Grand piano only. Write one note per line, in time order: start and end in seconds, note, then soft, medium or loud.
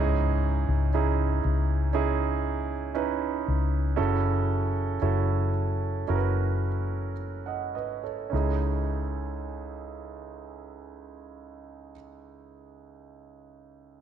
0.00 1.40 G#2 medium
0.00 0.88 C#4 medium
0.00 0.89 D#4 medium
0.00 0.89 E4 medium
0.00 0.89 G#4 medium
0.94 1.89 C#4 medium
0.94 1.89 D#4 medium
0.94 1.89 E4 medium
0.94 1.89 G#4 medium
1.93 2.90 C#4 medium
1.93 2.90 D#4 medium
1.93 2.91 E4 medium
1.93 2.90 G#4 medium
2.95 3.92 C#4 medium
2.95 3.93 D#4 medium
2.95 3.93 E4 medium
2.95 3.93 B4 medium
3.96 5.50 C#3 medium
3.96 4.96 C#4 medium
3.96 4.96 E4 medium
3.96 4.96 F#4 medium
3.96 4.96 A4 medium
5.02 6.03 C#4 medium
5.02 6.03 E4 medium
5.02 6.03 F#4 soft
5.02 6.04 A4 medium
6.08 7.13 C#4 medium
6.08 7.13 E4 soft
6.08 7.13 F#4 medium
6.08 6.16 A#4 medium
6.16 6.67 B4 medium
7.46 7.73 D#5 soft
7.46 7.73 F#5 soft
7.75 8.03 B4 soft
7.75 8.02 D#5 soft
8.03 8.58 A4 soft
8.03 8.58 C#5 soft
8.30 11.92 C#2 soft
8.30 11.90 C#4 soft
8.30 11.91 D#4 soft
8.30 11.93 E4 soft
8.35 11.95 G#4 medium